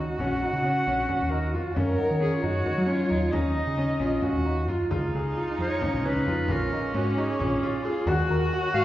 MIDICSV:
0, 0, Header, 1, 8, 480
1, 0, Start_track
1, 0, Key_signature, -6, "minor"
1, 0, Tempo, 449102
1, 214, Time_signature, 7, 3, 24, 8
1, 9456, End_track
2, 0, Start_track
2, 0, Title_t, "Celesta"
2, 0, Program_c, 0, 8
2, 195, Note_on_c, 0, 80, 45
2, 666, Note_off_c, 0, 80, 0
2, 1632, Note_on_c, 0, 77, 59
2, 1828, Note_on_c, 0, 80, 47
2, 1983, Note_on_c, 0, 82, 46
2, 2083, Note_off_c, 0, 77, 0
2, 2111, Note_on_c, 0, 78, 70
2, 2243, Note_off_c, 0, 80, 0
2, 2286, Note_off_c, 0, 82, 0
2, 2299, Note_on_c, 0, 82, 46
2, 2477, Note_on_c, 0, 85, 46
2, 2575, Note_off_c, 0, 78, 0
2, 2731, Note_off_c, 0, 82, 0
2, 2881, Note_off_c, 0, 85, 0
2, 4524, Note_on_c, 0, 77, 68
2, 4694, Note_on_c, 0, 80, 46
2, 4868, Note_on_c, 0, 82, 49
2, 4994, Note_off_c, 0, 77, 0
2, 5142, Note_off_c, 0, 80, 0
2, 5243, Note_on_c, 0, 68, 61
2, 5292, Note_off_c, 0, 82, 0
2, 5719, Note_off_c, 0, 68, 0
2, 6700, Note_on_c, 0, 63, 54
2, 7146, Note_off_c, 0, 63, 0
2, 7928, Note_on_c, 0, 65, 64
2, 8377, Note_off_c, 0, 65, 0
2, 8857, Note_on_c, 0, 66, 68
2, 9013, Note_on_c, 0, 70, 55
2, 9205, Note_on_c, 0, 73, 56
2, 9318, Note_off_c, 0, 66, 0
2, 9456, Note_off_c, 0, 70, 0
2, 9456, Note_off_c, 0, 73, 0
2, 9456, End_track
3, 0, Start_track
3, 0, Title_t, "Clarinet"
3, 0, Program_c, 1, 71
3, 198, Note_on_c, 1, 78, 92
3, 1393, Note_on_c, 1, 70, 74
3, 1409, Note_off_c, 1, 78, 0
3, 1639, Note_off_c, 1, 70, 0
3, 1873, Note_on_c, 1, 73, 81
3, 3539, Note_on_c, 1, 75, 100
3, 3555, Note_off_c, 1, 73, 0
3, 4756, Note_off_c, 1, 75, 0
3, 5986, Note_on_c, 1, 73, 95
3, 6474, Note_on_c, 1, 71, 96
3, 6490, Note_off_c, 1, 73, 0
3, 6961, Note_on_c, 1, 70, 93
3, 6977, Note_off_c, 1, 71, 0
3, 7431, Note_off_c, 1, 70, 0
3, 7438, Note_on_c, 1, 66, 75
3, 7678, Note_on_c, 1, 68, 77
3, 7694, Note_off_c, 1, 66, 0
3, 8388, Note_off_c, 1, 68, 0
3, 9343, Note_on_c, 1, 77, 107
3, 9456, Note_off_c, 1, 77, 0
3, 9456, End_track
4, 0, Start_track
4, 0, Title_t, "Viola"
4, 0, Program_c, 2, 41
4, 0, Note_on_c, 2, 66, 78
4, 1894, Note_on_c, 2, 70, 97
4, 1910, Note_off_c, 2, 66, 0
4, 2366, Note_off_c, 2, 70, 0
4, 2372, Note_on_c, 2, 68, 83
4, 2514, Note_off_c, 2, 68, 0
4, 2520, Note_on_c, 2, 65, 65
4, 2602, Note_on_c, 2, 66, 85
4, 2618, Note_off_c, 2, 65, 0
4, 3080, Note_on_c, 2, 65, 93
4, 3096, Note_off_c, 2, 66, 0
4, 3554, Note_on_c, 2, 63, 88
4, 3570, Note_off_c, 2, 65, 0
4, 4287, Note_on_c, 2, 65, 74
4, 4304, Note_off_c, 2, 63, 0
4, 4524, Note_on_c, 2, 66, 86
4, 4540, Note_off_c, 2, 65, 0
4, 5001, Note_on_c, 2, 65, 68
4, 5017, Note_off_c, 2, 66, 0
4, 5245, Note_off_c, 2, 65, 0
4, 5251, Note_on_c, 2, 63, 95
4, 6947, Note_on_c, 2, 61, 90
4, 6963, Note_off_c, 2, 63, 0
4, 8373, Note_on_c, 2, 65, 91
4, 8389, Note_off_c, 2, 61, 0
4, 8615, Note_on_c, 2, 66, 112
4, 8631, Note_off_c, 2, 65, 0
4, 9456, Note_off_c, 2, 66, 0
4, 9456, End_track
5, 0, Start_track
5, 0, Title_t, "Grand piano"
5, 0, Program_c, 3, 0
5, 0, Note_on_c, 3, 63, 68
5, 178, Note_off_c, 3, 63, 0
5, 215, Note_on_c, 3, 61, 77
5, 419, Note_off_c, 3, 61, 0
5, 455, Note_on_c, 3, 63, 60
5, 658, Note_off_c, 3, 63, 0
5, 684, Note_on_c, 3, 61, 67
5, 891, Note_off_c, 3, 61, 0
5, 930, Note_on_c, 3, 61, 74
5, 1134, Note_off_c, 3, 61, 0
5, 1161, Note_on_c, 3, 61, 64
5, 1368, Note_off_c, 3, 61, 0
5, 1403, Note_on_c, 3, 63, 74
5, 1608, Note_off_c, 3, 63, 0
5, 1644, Note_on_c, 3, 65, 67
5, 1848, Note_off_c, 3, 65, 0
5, 1884, Note_on_c, 3, 61, 84
5, 2088, Note_off_c, 3, 61, 0
5, 2120, Note_on_c, 3, 63, 64
5, 2324, Note_off_c, 3, 63, 0
5, 2354, Note_on_c, 3, 61, 66
5, 2559, Note_off_c, 3, 61, 0
5, 2589, Note_on_c, 3, 63, 73
5, 2796, Note_off_c, 3, 63, 0
5, 2822, Note_on_c, 3, 63, 67
5, 3032, Note_off_c, 3, 63, 0
5, 3058, Note_on_c, 3, 61, 77
5, 3269, Note_off_c, 3, 61, 0
5, 3306, Note_on_c, 3, 63, 72
5, 3514, Note_off_c, 3, 63, 0
5, 3551, Note_on_c, 3, 61, 84
5, 3757, Note_off_c, 3, 61, 0
5, 3795, Note_on_c, 3, 63, 68
5, 3999, Note_off_c, 3, 63, 0
5, 4037, Note_on_c, 3, 61, 74
5, 4241, Note_off_c, 3, 61, 0
5, 4272, Note_on_c, 3, 61, 79
5, 4480, Note_off_c, 3, 61, 0
5, 4508, Note_on_c, 3, 61, 65
5, 4720, Note_off_c, 3, 61, 0
5, 4761, Note_on_c, 3, 63, 79
5, 4970, Note_off_c, 3, 63, 0
5, 5010, Note_on_c, 3, 65, 72
5, 5218, Note_off_c, 3, 65, 0
5, 5251, Note_on_c, 3, 65, 86
5, 5460, Note_off_c, 3, 65, 0
5, 5506, Note_on_c, 3, 68, 69
5, 5710, Note_off_c, 3, 68, 0
5, 5744, Note_on_c, 3, 65, 72
5, 5949, Note_off_c, 3, 65, 0
5, 5992, Note_on_c, 3, 65, 76
5, 6193, Note_off_c, 3, 65, 0
5, 6226, Note_on_c, 3, 61, 66
5, 6429, Note_off_c, 3, 61, 0
5, 6471, Note_on_c, 3, 61, 80
5, 6671, Note_off_c, 3, 61, 0
5, 6712, Note_on_c, 3, 65, 77
5, 6912, Note_off_c, 3, 65, 0
5, 6940, Note_on_c, 3, 65, 84
5, 7145, Note_off_c, 3, 65, 0
5, 7184, Note_on_c, 3, 63, 69
5, 7386, Note_off_c, 3, 63, 0
5, 7422, Note_on_c, 3, 61, 80
5, 7625, Note_off_c, 3, 61, 0
5, 7666, Note_on_c, 3, 63, 78
5, 7867, Note_off_c, 3, 63, 0
5, 7902, Note_on_c, 3, 61, 74
5, 8105, Note_off_c, 3, 61, 0
5, 8155, Note_on_c, 3, 65, 85
5, 8352, Note_off_c, 3, 65, 0
5, 8388, Note_on_c, 3, 68, 81
5, 8588, Note_off_c, 3, 68, 0
5, 8633, Note_on_c, 3, 66, 94
5, 8830, Note_off_c, 3, 66, 0
5, 8875, Note_on_c, 3, 70, 70
5, 9071, Note_off_c, 3, 70, 0
5, 9117, Note_on_c, 3, 66, 79
5, 9311, Note_off_c, 3, 66, 0
5, 9346, Note_on_c, 3, 66, 82
5, 9456, Note_off_c, 3, 66, 0
5, 9456, End_track
6, 0, Start_track
6, 0, Title_t, "Woodwind section"
6, 0, Program_c, 4, 71
6, 5249, Note_on_c, 4, 65, 68
6, 5256, Note_on_c, 4, 56, 63
6, 5257, Note_on_c, 4, 49, 61
6, 6923, Note_off_c, 4, 65, 0
6, 6933, Note_on_c, 4, 58, 74
6, 8586, Note_off_c, 4, 56, 0
6, 8587, Note_off_c, 4, 49, 0
6, 8597, Note_off_c, 4, 58, 0
6, 8618, Note_on_c, 4, 51, 76
6, 8621, Note_on_c, 4, 61, 67
6, 8623, Note_on_c, 4, 66, 81
6, 9456, Note_off_c, 4, 51, 0
6, 9456, Note_off_c, 4, 61, 0
6, 9456, Note_off_c, 4, 66, 0
6, 9456, End_track
7, 0, Start_track
7, 0, Title_t, "Picked electric bass"
7, 0, Program_c, 5, 34
7, 0, Note_on_c, 5, 37, 70
7, 159, Note_off_c, 5, 37, 0
7, 210, Note_on_c, 5, 34, 77
7, 502, Note_off_c, 5, 34, 0
7, 566, Note_on_c, 5, 49, 73
7, 762, Note_off_c, 5, 49, 0
7, 932, Note_on_c, 5, 34, 79
7, 1125, Note_off_c, 5, 34, 0
7, 1303, Note_on_c, 5, 39, 79
7, 1655, Note_off_c, 5, 39, 0
7, 1655, Note_on_c, 5, 41, 73
7, 1748, Note_off_c, 5, 41, 0
7, 1898, Note_on_c, 5, 42, 86
7, 2085, Note_off_c, 5, 42, 0
7, 2248, Note_on_c, 5, 51, 72
7, 2438, Note_off_c, 5, 51, 0
7, 2602, Note_on_c, 5, 42, 83
7, 2793, Note_off_c, 5, 42, 0
7, 2968, Note_on_c, 5, 54, 79
7, 3253, Note_off_c, 5, 54, 0
7, 3326, Note_on_c, 5, 39, 81
7, 3515, Note_off_c, 5, 39, 0
7, 3571, Note_on_c, 5, 39, 81
7, 3855, Note_off_c, 5, 39, 0
7, 3925, Note_on_c, 5, 49, 85
7, 4115, Note_off_c, 5, 49, 0
7, 4274, Note_on_c, 5, 34, 80
7, 4471, Note_off_c, 5, 34, 0
7, 4636, Note_on_c, 5, 39, 78
7, 5000, Note_off_c, 5, 39, 0
7, 5000, Note_on_c, 5, 42, 77
7, 5102, Note_off_c, 5, 42, 0
7, 5250, Note_on_c, 5, 37, 84
7, 5449, Note_off_c, 5, 37, 0
7, 5495, Note_on_c, 5, 37, 77
7, 5693, Note_off_c, 5, 37, 0
7, 5969, Note_on_c, 5, 41, 80
7, 6072, Note_off_c, 5, 41, 0
7, 6216, Note_on_c, 5, 37, 74
7, 6316, Note_off_c, 5, 37, 0
7, 6343, Note_on_c, 5, 34, 79
7, 6466, Note_off_c, 5, 34, 0
7, 6466, Note_on_c, 5, 37, 102
7, 6562, Note_off_c, 5, 37, 0
7, 6581, Note_on_c, 5, 37, 81
7, 6679, Note_off_c, 5, 37, 0
7, 6701, Note_on_c, 5, 41, 82
7, 6895, Note_off_c, 5, 41, 0
7, 6947, Note_on_c, 5, 34, 98
7, 7138, Note_off_c, 5, 34, 0
7, 7422, Note_on_c, 5, 44, 93
7, 7615, Note_off_c, 5, 44, 0
7, 7912, Note_on_c, 5, 34, 77
7, 8101, Note_off_c, 5, 34, 0
7, 8619, Note_on_c, 5, 39, 95
7, 8812, Note_off_c, 5, 39, 0
7, 8872, Note_on_c, 5, 39, 89
7, 9059, Note_off_c, 5, 39, 0
7, 9342, Note_on_c, 5, 44, 89
7, 9436, Note_off_c, 5, 44, 0
7, 9456, End_track
8, 0, Start_track
8, 0, Title_t, "Frame drum"
8, 201, Note_on_c, 9, 64, 52
8, 308, Note_off_c, 9, 64, 0
8, 933, Note_on_c, 9, 64, 17
8, 1040, Note_off_c, 9, 64, 0
8, 1164, Note_on_c, 9, 64, 53
8, 1271, Note_off_c, 9, 64, 0
8, 1886, Note_on_c, 9, 64, 62
8, 1993, Note_off_c, 9, 64, 0
8, 2606, Note_on_c, 9, 64, 17
8, 2713, Note_off_c, 9, 64, 0
8, 2841, Note_on_c, 9, 64, 55
8, 2948, Note_off_c, 9, 64, 0
8, 3557, Note_on_c, 9, 64, 60
8, 3664, Note_off_c, 9, 64, 0
8, 3796, Note_on_c, 9, 64, 18
8, 3903, Note_off_c, 9, 64, 0
8, 4035, Note_on_c, 9, 64, 18
8, 4142, Note_off_c, 9, 64, 0
8, 4267, Note_on_c, 9, 64, 17
8, 4374, Note_off_c, 9, 64, 0
8, 4513, Note_on_c, 9, 64, 54
8, 4620, Note_off_c, 9, 64, 0
8, 5009, Note_on_c, 9, 64, 19
8, 5116, Note_off_c, 9, 64, 0
8, 5245, Note_on_c, 9, 64, 64
8, 5352, Note_off_c, 9, 64, 0
8, 6215, Note_on_c, 9, 64, 63
8, 6322, Note_off_c, 9, 64, 0
8, 6455, Note_on_c, 9, 64, 21
8, 6562, Note_off_c, 9, 64, 0
8, 6691, Note_on_c, 9, 64, 20
8, 6798, Note_off_c, 9, 64, 0
8, 6927, Note_on_c, 9, 64, 66
8, 7034, Note_off_c, 9, 64, 0
8, 7419, Note_on_c, 9, 64, 20
8, 7526, Note_off_c, 9, 64, 0
8, 7909, Note_on_c, 9, 64, 63
8, 8016, Note_off_c, 9, 64, 0
8, 8147, Note_on_c, 9, 64, 21
8, 8254, Note_off_c, 9, 64, 0
8, 8387, Note_on_c, 9, 64, 21
8, 8494, Note_off_c, 9, 64, 0
8, 8624, Note_on_c, 9, 64, 72
8, 8731, Note_off_c, 9, 64, 0
8, 9106, Note_on_c, 9, 64, 21
8, 9213, Note_off_c, 9, 64, 0
8, 9456, End_track
0, 0, End_of_file